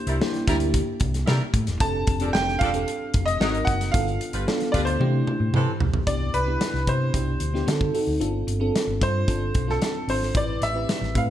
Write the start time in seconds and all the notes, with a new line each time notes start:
Already playing: A#3 D4 E4 G4 C5
0.07 C2 G3 E4 A#4, closed hi-hat
0.21 A#3 D4 E4 G4, snare
0.34 snare, closed hi-hat
0.47 D2 G3 A#3 D4 E4 G4 A#4, kick, closed hi-hat
0.60 closed hi-hat
0.74 kick, closed hi-hat
1.00 C2, kick, closed hi-hat
1.14 snare, closed hi-hat
1.26 C3 G3 E4 A#4, snare
1.54 A2, kick, closed hi-hat
1.67 E1, snare, closed hi-hat
1.80 F1 C4 D4 G4 A4 A5, kick, closed hi-hat
2.07 F1, kick, closed hi-hat
2.20 F3 C4 D4 G4 G#4 A4, closed hi-hat
2.28 A4
2.33 F1 G5, snare
2.48 snare
2.59 E1 F3 D4 A4 F5, kick, closed hi-hat
2.73 C4 D4 G4 A4, closed hi-hat
2.88 closed hi-hat
3.14 F1, kick, closed hi-hat
3.26 D#5, closed hi-hat
3.40 G#1 F#3 C4 D#4 F#4 A#4, snare
3.55 closed hi-hat
3.65 F#1 F#5, kick, closed hi-hat
3.81 snare, closed hi-hat
3.92 G1 B3 D4 F4 A4 F5, kick, closed hi-hat
4.08 closed hi-hat
4.21 closed hi-hat
4.33 G1 G3 F4 B4, closed hi-hat
4.47 B3 D4 F4 A4, snare
4.60 snare, closed hi-hat
4.72 D2 G3 B3 D4 F4 A4 B4 D5, kick, closed hi-hat
4.85 C5, closed hi-hat
5.00 C3 A3 D4 E4 G4, high tom
5.27 mid tom
5.40 A2
5.54 C3 E3 C4 A4, mid tom
5.80 C2, floor tom
5.94 B1, floor tom
6.07 C2 B3 D4 E4 G4 D5, kick, closed hi-hat
6.34 C2 B4, closed hi-hat
6.46 B3 D4 E4 G4
6.61 snare, closed hi-hat
6.74 C2, snare
6.87 C3 B3 D4 E4 G4 C5, kick, closed hi-hat
7.13 C2 B2 D4 E4 G4, kick, closed hi-hat
7.40 D2, closed hi-hat
7.54 B3 D4 E4 G4, snare
7.67 D3 C4 D#4 F#4 A4, snare, closed hi-hat
7.81 kick
7.94 C4 D#4 F#4 A4, open hi-hat
8.07 D2
8.20 G1 C4 D4 F4 A4, closed hi-hat
8.47 G1, closed hi-hat
8.60 C4 D4 F4 A4
8.76 snare, closed hi-hat
8.87 G1
9.01 G2 C4 D4 F4 A4 C5, kick, closed hi-hat
9.28 G1 C4 D4 F4 A4, kick, closed hi-hat
9.55 B1, kick, closed hi-hat
9.67 C4 D4 F4 A4, snare
9.82 snare, closed hi-hat
10.08 G#1 C4 D4 F4 A4 C5, open hi-hat
10.23 snare
10.34 A1 C4 E4 G4 B4 D5, kick, closed hi-hat
10.61 A1 E5, snare, closed hi-hat
10.74 C4 E4 G4 B4
10.89 snare, closed hi-hat
11.01 A1, snare
11.14 A2 C4 E4 G4 B4 F5, kick, closed hi-hat